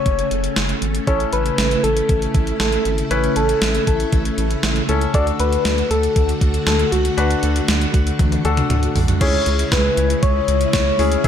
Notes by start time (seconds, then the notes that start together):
Already playing: C#3 A3 C#4 F#4 A4 C#5 G#5
0.06 F#1, kick, closed hi-hat
0.19 closed hi-hat
0.31 F#1, closed hi-hat
0.44 closed hi-hat
0.56 F#1, snare, closed hi-hat
0.69 closed hi-hat
0.82 G#1, closed hi-hat
0.95 closed hi-hat
1.07 A1 C#4 E4 A4 C#5, kick, closed hi-hat
1.20 closed hi-hat
1.33 A1 B4, closed hi-hat
1.46 closed hi-hat
1.58 A1, snare, closed hi-hat
1.71 closed hi-hat
1.84 A1 A4, closed hi-hat
1.97 closed hi-hat
2.09 A1, kick, closed hi-hat
2.22 closed hi-hat
2.35 A1, kick, closed hi-hat
2.47 closed hi-hat
2.60 A1 A4, snare, closed hi-hat
2.72 closed hi-hat
2.85 G#1, closed hi-hat
2.98 closed hi-hat
3.11 A1 C#4 E4 B4, closed hi-hat
3.24 closed hi-hat
3.36 A1 A4, closed hi-hat
3.49 closed hi-hat
3.62 A1, snare, closed hi-hat
3.75 closed hi-hat
3.87 A1 A4, kick, closed hi-hat
4.00 closed hi-hat
4.12 A1, kick, closed hi-hat
4.25 closed hi-hat
4.38 A1, closed hi-hat
4.51 closed hi-hat
4.63 A1, snare, closed hi-hat
4.76 closed hi-hat
4.89 C#2 C#4 E4 A4, closed hi-hat
5.01 closed hi-hat
5.14 D2 D3 D4 F#4 A4 D5, kick, closed hi-hat
5.27 closed hi-hat
5.40 D2 B4, closed hi-hat
5.53 closed hi-hat
5.65 D2, snare, closed hi-hat
5.78 closed hi-hat
5.90 D2 A4, closed hi-hat
6.03 closed hi-hat
6.16 D2, kick, closed hi-hat
6.29 closed hi-hat
6.41 D2, kick, closed hi-hat
6.54 closed hi-hat
6.67 D2 A4, snare, closed hi-hat
6.79 closed hi-hat
6.92 C#2 F#4, closed hi-hat
7.05 closed hi-hat
7.17 D2 D4 F#4 B4, closed hi-hat
7.31 closed hi-hat
7.43 D2, closed hi-hat
7.56 closed hi-hat
7.68 D2, snare, closed hi-hat
7.81 closed hi-hat
7.94 D2, kick, closed hi-hat
8.07 closed hi-hat
8.19 D2, kick, closed hi-hat, high tom
8.32 closed hi-hat, high tom
8.45 D2 D4 F#4 A4, closed hi-hat
8.57 closed hi-hat, mid tom
8.70 D2, closed hi-hat, mid tom
8.83 closed hi-hat
8.96 B1, floor tom, open hi-hat
9.08 closed hi-hat, floor tom
9.21 C#2 C#3 G#3 C#4 E4 G#4 C#5, kick, closed hi-hat, crash
9.46 C#2, closed hi-hat
9.59 closed hi-hat
9.72 C#2 B4, kick, snare, closed hi-hat
9.97 C#2, closed hi-hat
10.10 closed hi-hat
10.23 C#2 C#5, kick, closed hi-hat
10.48 C#2, closed hi-hat
10.61 closed hi-hat
10.73 C#2 C#5, kick, snare, closed hi-hat
10.99 D2 C#4 E4 G#4, open hi-hat
11.12 closed hi-hat
11.24 E1 B2 B3 E4 G#4 E5, kick, closed hi-hat